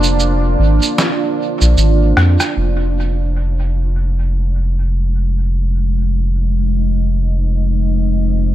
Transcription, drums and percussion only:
0.03 cabasa
0.19 cabasa
0.82 cabasa
0.98 snare, cabasa
1.61 cabasa
1.77 cabasa
2.17 cross-stick
2.40 cross-stick, cabasa

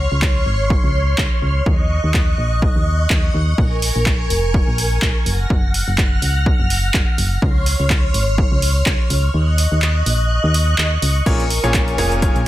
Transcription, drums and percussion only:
0.22 kick, clap
0.70 kick
1.18 kick, clap
1.66 kick
2.14 kick, clap
2.62 kick
3.10 kick, clap
3.58 kick
3.82 open hi-hat
4.06 kick, clap
4.30 open hi-hat
4.54 kick
4.78 open hi-hat
5.02 kick, clap
5.26 open hi-hat
5.50 kick
5.74 open hi-hat
5.98 kick, clap
6.22 open hi-hat
6.46 kick
6.70 open hi-hat
6.94 kick, clap
7.18 open hi-hat
7.42 kick
7.66 open hi-hat
7.90 kick, clap
8.14 open hi-hat
8.38 kick
8.62 open hi-hat
8.86 kick, clap
9.10 open hi-hat
9.58 open hi-hat
9.82 clap
10.06 open hi-hat
10.54 open hi-hat
10.78 clap
11.02 open hi-hat
11.26 kick, closed hi-hat, crash
11.40 closed hi-hat
11.50 open hi-hat
11.64 closed hi-hat
11.74 kick, clap, closed hi-hat
11.88 closed hi-hat
11.98 open hi-hat
12.12 closed hi-hat
12.22 kick, closed hi-hat
12.36 closed hi-hat

